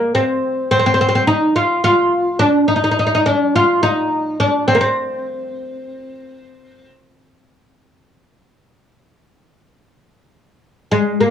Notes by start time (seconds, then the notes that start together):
Already playing: A#3
0.15 C4
0.71 C4
0.79 C4
0.86 C4
0.94 C4
1.01 C4
1.09 C4
1.15 C4
1.27 D#4
1.56 F4
1.84 F4
2.39 D4
2.68 D#4
2.76 D#4
2.84 D#4
2.91 D#4
2.99 D#4
3.07 D#4
3.15 D#4
3.26 D4
3.56 F4
3.83 D#4
4.40 D4
4.68 C4
4.75 A#3
4.81 C4
10.91 G#3
11.21 A#3